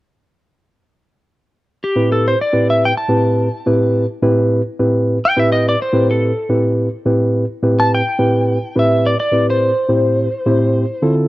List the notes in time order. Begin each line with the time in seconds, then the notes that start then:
1.84 G4
1.96 A2 C4 E4 G4 B4
2.12 A4
2.28 C5
2.41 D5
2.53 A2 C4 E4 G4 B4
2.70 E5
2.85 G5
2.97 A5
3.09 A2 C4 E4 G4 B4
3.66 A2 C4 E4 G4 B4
4.22 A2 C4 E4 G4 B4
4.79 A2 C4 E4 G4 B4
5.25 G5
5.36 A2 C4 E4 G4 B4 E5
5.52 D#5
5.69 D5
5.82 C5
5.93 A2 C4 E4 G4 B4
6.11 A4
6.50 A2 C4 E4 G4 B4
7.06 A2 C4 E4 G4 B4
7.63 A2 C4 E4 G4 B4
7.80 A5
7.95 G5
8.19 A2 C4 E4 G4 B4
8.76 A2 C4 E4 G4 B4 E5
9.06 D5
9.20 D5
9.32 A2 C4 E4 G4 B4
9.50 C5
9.89 A2 C4 E4 G4 C5
10.46 A2 C4 E4 G4 C5
11.02 D3 C4 E4 F4 A4